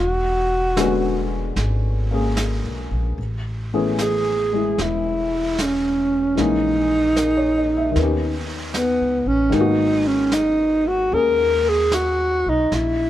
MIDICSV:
0, 0, Header, 1, 5, 480
1, 0, Start_track
1, 0, Key_signature, 5, "minor"
1, 0, Tempo, 800000
1, 1908, Time_signature, 4, 2, 24, 8
1, 3348, Tempo, 792602
1, 7901, End_track
2, 0, Start_track
2, 0, Title_t, "Alto saxophone"
2, 0, Program_c, 0, 65
2, 0, Note_on_c, 0, 66, 71
2, 919, Note_off_c, 0, 66, 0
2, 2408, Note_on_c, 0, 68, 67
2, 2890, Note_on_c, 0, 64, 68
2, 2899, Note_off_c, 0, 68, 0
2, 3370, Note_on_c, 0, 61, 67
2, 3379, Note_off_c, 0, 64, 0
2, 3845, Note_on_c, 0, 63, 79
2, 3854, Note_off_c, 0, 61, 0
2, 5167, Note_off_c, 0, 63, 0
2, 5271, Note_on_c, 0, 59, 72
2, 5587, Note_on_c, 0, 61, 74
2, 5596, Note_off_c, 0, 59, 0
2, 5744, Note_on_c, 0, 63, 72
2, 5753, Note_off_c, 0, 61, 0
2, 6067, Note_on_c, 0, 61, 70
2, 6076, Note_off_c, 0, 63, 0
2, 6228, Note_on_c, 0, 63, 71
2, 6237, Note_off_c, 0, 61, 0
2, 6555, Note_on_c, 0, 66, 76
2, 6564, Note_off_c, 0, 63, 0
2, 6717, Note_on_c, 0, 70, 85
2, 6726, Note_off_c, 0, 66, 0
2, 7048, Note_on_c, 0, 68, 82
2, 7057, Note_off_c, 0, 70, 0
2, 7203, Note_on_c, 0, 66, 77
2, 7212, Note_off_c, 0, 68, 0
2, 7533, Note_on_c, 0, 63, 69
2, 7542, Note_off_c, 0, 66, 0
2, 7679, Note_off_c, 0, 63, 0
2, 7689, Note_on_c, 0, 64, 73
2, 7901, Note_off_c, 0, 64, 0
2, 7901, End_track
3, 0, Start_track
3, 0, Title_t, "Grand piano"
3, 0, Program_c, 1, 0
3, 113, Control_c, 1, 64, 127
3, 458, Note_on_c, 1, 50, 50
3, 465, Note_on_c, 1, 56, 44
3, 475, Note_on_c, 1, 59, 42
3, 480, Note_on_c, 1, 61, 45
3, 485, Note_on_c, 1, 66, 52
3, 1265, Note_on_c, 1, 58, 38
3, 1268, Note_off_c, 1, 61, 0
3, 1277, Note_on_c, 1, 61, 34
3, 1284, Note_on_c, 1, 68, 42
3, 1905, Note_off_c, 1, 50, 0
3, 1906, Note_off_c, 1, 58, 0
3, 1908, Note_off_c, 1, 56, 0
3, 1912, Note_off_c, 1, 61, 0
3, 1913, Note_off_c, 1, 59, 0
3, 1916, Note_off_c, 1, 68, 0
3, 1916, Control_c, 1, 64, 0
3, 1919, Note_off_c, 1, 66, 0
3, 2014, Control_c, 1, 64, 127
3, 2241, Note_on_c, 1, 52, 44
3, 2241, Note_on_c, 1, 57, 41
3, 2244, Note_on_c, 1, 59, 40
3, 2245, Note_on_c, 1, 61, 39
3, 2246, Note_on_c, 1, 68, 48
3, 2717, Note_on_c, 1, 56, 36
3, 2732, Note_on_c, 1, 64, 37
3, 3808, Note_off_c, 1, 52, 0
3, 3817, Note_off_c, 1, 56, 0
3, 3818, Note_on_c, 1, 52, 43
3, 3826, Note_on_c, 1, 56, 45
3, 3830, Note_off_c, 1, 61, 0
3, 3831, Note_on_c, 1, 58, 45
3, 3833, Note_off_c, 1, 57, 0
3, 3834, Note_off_c, 1, 59, 0
3, 3835, Note_off_c, 1, 68, 0
3, 3837, Control_c, 1, 64, 0
3, 3839, Note_on_c, 1, 61, 44
3, 3840, Note_off_c, 1, 64, 0
3, 3850, Note_on_c, 1, 68, 47
3, 3926, Control_c, 1, 64, 127
3, 4318, Note_on_c, 1, 70, 39
3, 4433, Note_on_c, 1, 73, 41
3, 4538, Note_off_c, 1, 70, 0
3, 4558, Note_on_c, 1, 75, 43
3, 4636, Note_off_c, 1, 73, 0
3, 4675, Note_on_c, 1, 76, 46
3, 4700, Note_off_c, 1, 75, 0
3, 4762, Note_on_c, 1, 51, 44
3, 4780, Note_off_c, 1, 52, 0
3, 4784, Note_off_c, 1, 56, 0
3, 4785, Note_on_c, 1, 70, 38
3, 4786, Note_off_c, 1, 58, 0
3, 4791, Note_off_c, 1, 61, 0
3, 4794, Control_c, 1, 64, 0
3, 4796, Note_off_c, 1, 68, 0
3, 4797, Note_on_c, 1, 59, 39
3, 4814, Note_on_c, 1, 61, 39
3, 4831, Note_on_c, 1, 67, 45
3, 4838, Note_off_c, 1, 76, 0
3, 4899, Control_c, 1, 64, 127
3, 5711, Note_off_c, 1, 51, 0
3, 5720, Note_on_c, 1, 51, 46
3, 5736, Note_on_c, 1, 56, 41
3, 5739, Note_off_c, 1, 70, 0
3, 5745, Note_off_c, 1, 59, 0
3, 5747, Control_c, 1, 64, 0
3, 5751, Note_on_c, 1, 58, 44
3, 5754, Note_off_c, 1, 61, 0
3, 5762, Note_off_c, 1, 67, 0
3, 5770, Note_on_c, 1, 59, 42
3, 5786, Note_on_c, 1, 66, 52
3, 5853, Control_c, 1, 64, 127
3, 6699, Note_off_c, 1, 58, 0
3, 6708, Note_on_c, 1, 58, 38
3, 6714, Note_on_c, 1, 61, 36
3, 6724, Note_on_c, 1, 68, 42
3, 7659, Note_off_c, 1, 51, 0
3, 7667, Note_off_c, 1, 56, 0
3, 7672, Note_off_c, 1, 58, 0
3, 7675, Note_off_c, 1, 61, 0
3, 7678, Control_c, 1, 64, 0
3, 7680, Note_off_c, 1, 68, 0
3, 7684, Note_off_c, 1, 59, 0
3, 7692, Note_off_c, 1, 66, 0
3, 7782, Control_c, 1, 64, 127
3, 7901, End_track
4, 0, Start_track
4, 0, Title_t, "Upright bass"
4, 0, Program_c, 2, 32
4, 0, Note_on_c, 2, 28, 67
4, 917, Note_off_c, 2, 28, 0
4, 936, Note_on_c, 2, 32, 69
4, 1558, Note_off_c, 2, 32, 0
4, 1583, Note_on_c, 2, 35, 49
4, 1734, Note_off_c, 2, 35, 0
4, 1746, Note_on_c, 2, 34, 54
4, 1896, Note_off_c, 2, 34, 0
4, 1907, Note_on_c, 2, 33, 70
4, 2846, Note_off_c, 2, 33, 0
4, 2871, Note_on_c, 2, 28, 70
4, 3805, Note_off_c, 2, 28, 0
4, 3834, Note_on_c, 2, 34, 70
4, 4764, Note_off_c, 2, 34, 0
4, 4787, Note_on_c, 2, 39, 75
4, 5397, Note_off_c, 2, 39, 0
4, 5424, Note_on_c, 2, 37, 52
4, 5570, Note_off_c, 2, 37, 0
4, 5575, Note_on_c, 2, 33, 61
4, 5726, Note_off_c, 2, 33, 0
4, 5737, Note_on_c, 2, 32, 78
4, 6677, Note_off_c, 2, 32, 0
4, 6703, Note_on_c, 2, 39, 77
4, 7488, Note_off_c, 2, 39, 0
4, 7515, Note_on_c, 2, 35, 58
4, 7660, Note_off_c, 2, 35, 0
4, 7668, Note_on_c, 2, 34, 71
4, 7901, Note_off_c, 2, 34, 0
4, 7901, End_track
5, 0, Start_track
5, 0, Title_t, "Drums"
5, 461, Note_on_c, 9, 38, 39
5, 461, Note_on_c, 9, 44, 44
5, 521, Note_off_c, 9, 38, 0
5, 521, Note_off_c, 9, 44, 0
5, 938, Note_on_c, 9, 25, 27
5, 938, Note_on_c, 9, 38, 25
5, 998, Note_off_c, 9, 38, 0
5, 1420, Note_on_c, 9, 38, 36
5, 1420, Note_on_c, 9, 44, 47
5, 1480, Note_off_c, 9, 38, 0
5, 1480, Note_off_c, 9, 44, 0
5, 1908, Note_off_c, 9, 25, 0
5, 1908, Note_on_c, 9, 25, 32
5, 2391, Note_on_c, 9, 38, 36
5, 2391, Note_on_c, 9, 44, 44
5, 2451, Note_off_c, 9, 38, 0
5, 2451, Note_off_c, 9, 44, 0
5, 2870, Note_off_c, 9, 25, 0
5, 2870, Note_on_c, 9, 25, 37
5, 2870, Note_on_c, 9, 38, 26
5, 2930, Note_off_c, 9, 38, 0
5, 3351, Note_on_c, 9, 38, 35
5, 3351, Note_on_c, 9, 44, 44
5, 3412, Note_off_c, 9, 38, 0
5, 3412, Note_off_c, 9, 44, 0
5, 3829, Note_off_c, 9, 25, 0
5, 3829, Note_on_c, 9, 25, 28
5, 3829, Note_on_c, 9, 38, 24
5, 3889, Note_off_c, 9, 38, 0
5, 4307, Note_on_c, 9, 38, 39
5, 4307, Note_on_c, 9, 44, 54
5, 4368, Note_off_c, 9, 38, 0
5, 4368, Note_off_c, 9, 44, 0
5, 4788, Note_off_c, 9, 25, 0
5, 4788, Note_on_c, 9, 25, 36
5, 4788, Note_on_c, 9, 38, 26
5, 4848, Note_off_c, 9, 38, 0
5, 5262, Note_on_c, 9, 38, 38
5, 5262, Note_on_c, 9, 44, 46
5, 5322, Note_off_c, 9, 38, 0
5, 5322, Note_off_c, 9, 44, 0
5, 5735, Note_off_c, 9, 25, 0
5, 5735, Note_on_c, 9, 25, 33
5, 5735, Note_on_c, 9, 38, 25
5, 5796, Note_off_c, 9, 38, 0
5, 6217, Note_on_c, 9, 38, 37
5, 6217, Note_on_c, 9, 44, 47
5, 6277, Note_off_c, 9, 38, 0
5, 6277, Note_off_c, 9, 44, 0
5, 6696, Note_off_c, 9, 25, 0
5, 6696, Note_on_c, 9, 25, 37
5, 7185, Note_on_c, 9, 38, 39
5, 7185, Note_on_c, 9, 44, 41
5, 7246, Note_off_c, 9, 38, 0
5, 7246, Note_off_c, 9, 44, 0
5, 7671, Note_off_c, 9, 25, 0
5, 7671, Note_on_c, 9, 25, 27
5, 7671, Note_on_c, 9, 38, 24
5, 7732, Note_off_c, 9, 38, 0
5, 7901, Note_off_c, 9, 25, 0
5, 7901, End_track
0, 0, End_of_file